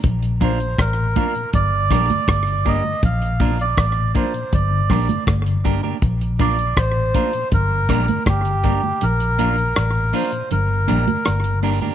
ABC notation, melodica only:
X:1
M:4/4
L:1/16
Q:1/4=80
K:Bb
V:1 name="Melodica"
z2 c2 B4 d6 e2 | f3 d3 c2 d4 z4 | z2 d2 c4 B4 G4 | B6 c2 B6 z2 |]